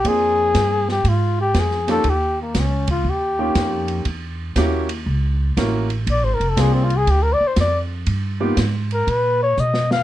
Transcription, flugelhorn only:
X:1
M:4/4
L:1/16
Q:"Swing" 1/4=120
K:Eb
V:1 name="Flugelhorn"
A6 G2 F2 G2 A2 =A2 | G2 B,2 _D2 F2 G8 | z16 | d c B =A _A C F A G B d c d2 z2 |
z6 ^A2 =B2 _d2 ^d2 f2 |]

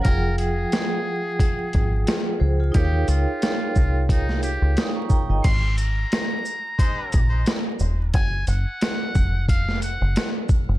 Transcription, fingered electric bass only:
X:1
M:4/4
L:1/16
Q:"Swing 16ths" 1/4=89
K:Ab
V:1 name="Fingered electric bass" clef=bass
F,,,4 z6 A,,,2 z2 D,,2 | E,,2 D,, z3 C,,4- C,, D,, z3 G,,, | A,,,4 z6 B,,,2 z2 E,,,2 | _G,,,2 G,,, z3 F,,,4- F,,, G,,, z3 G,,, |]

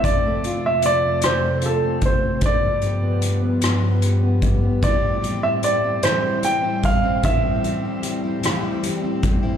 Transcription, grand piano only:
X:1
M:6/8
L:1/16
Q:3/8=50
K:Am
V:1 name="Grand piano"
d3 e d2 c2 A2 c2 | d4 z8 | d3 e d2 c2 g2 f2 | e4 z8 |]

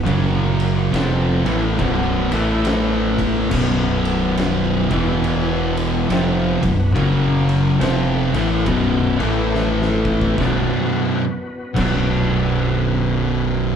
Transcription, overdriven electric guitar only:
X:1
M:4/4
L:1/8
Q:"Swing" 1/4=70
K:Ador
V:1 name="Overdriven electric guitar" clef=bass
[F,,^C,F,]2 [^E,,=C,^E,] [A,,=E,A,] [B,,,F,,B,,] [A,,E,A,]3 | [B,,,F,,B,,]3 [E,,B,,E,]3 [^E,,C,^E,] [B,,,F,,] | [F,,^C,F,]2 [^E,,=C,^E,] [A,,=E,A,] [B,,,F,,B,,] [A,,E,A,]3 | [B,,,F,,B,,F,D] z2 [B,,,F,,B,,F,D]4- [B,,,F,,B,,F,D] |]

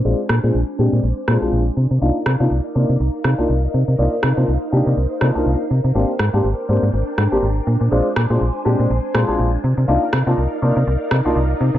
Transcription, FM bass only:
X:1
M:4/4
L:1/16
Q:"Swing 16ths" 1/4=122
K:Cm
V:1 name="FM bass" clef=bass
B,,, z B,, B,, B,,, z B,, B,, B,,, z B,, B,,, B,,, z C, C, | C,, z C, C, C,, z C, C, C,, z C, C,, C,, z C, C, | C,, z C, C, C,, z C, C, C,, z C, C,, C,, z C, C, | A,,, z A,, A,, A,,, z A,, A,, A,,, z A,, A,,, A,,, z B,, B,, |
B,,, z B,, B,, B,,, z B,, B,, B,,, z B,, B,,, B,,, z C, C, | C,, z C, C, C,, z C, C, C,, z C, C,, C,, z C, C, |]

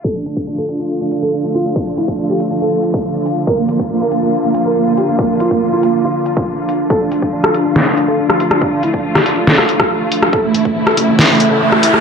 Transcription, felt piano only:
X:1
M:4/4
L:1/16
Q:1/4=140
K:Dm
V:1 name="Felt piano"
A D D z D A D D z D D A D D F D | D D E D D G D D A6- A z | B B, B, z B, B B, B, z B, z B B, B, G B, | B, B, F B, B, F B, B, F6- F z |
A D D z D A D D z D D A D D F D | D D E D D G D D A6- A z | A A, A, z A, A A, A, z A, A, A A, A, E A, |]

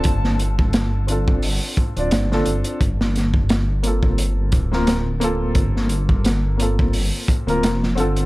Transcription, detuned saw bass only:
X:1
M:4/4
L:1/16
Q:"Swing 16ths" 1/4=87
K:Gm
V:1 name="Detuned saw bass" clef=bass
G,,,8 G,,, z2 D,,, G,,,2 G,,, z | G,,,8- G,,,2 D,,,6 | G,,,8 G,,, z2 D,,, F,,,2 G,,,2 |]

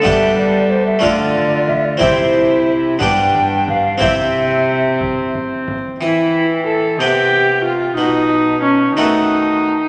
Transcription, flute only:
X:1
M:6/8
L:1/16
Q:3/8=61
K:Ephr
V:1 name="Flute"
e2 d2 c e d4 e d | c4 z2 g4 f2 | e6 z6 | g6 g6 |
a6 a6 |]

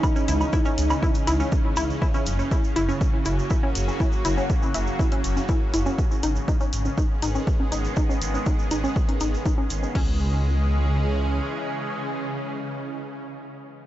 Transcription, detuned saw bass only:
X:1
M:4/4
L:1/8
Q:1/4=121
K:C#dor
V:1 name="Detuned saw bass" clef=bass
z C,, z C,, z C,, z C,, | z F,,, z F,,, z F,,, z F,,, | z F,,, z F,,, z F,,, z F,,, | z G,,, z G,,, z G,,, z G,,, |
z G,,, z G,,, z G,,, z G,,, | C,,6 z2 | z8 |]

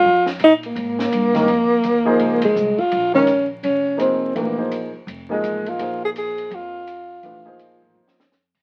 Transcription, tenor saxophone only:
X:1
M:4/4
L:1/8
Q:"Swing" 1/4=167
K:Bbdor
V:1 name="Tenor saxophone"
F z E B,4- B,- | B,4- B, A,2 F- | F D2 z D2 C2 | B,3 z2 A,2 F- |
F A A2 F4- | F6 z2 |]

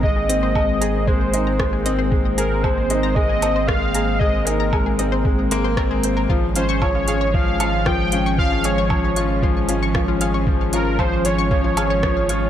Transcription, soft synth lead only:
X:1
M:4/4
L:1/8
Q:1/4=115
K:Ab
V:1 name="Soft synth lead"
e4 c3 z | z B c2 e2 f2 | e B3 z4 | z c d2 f2 g2 |
f d3 z4 | z B c d4- d |]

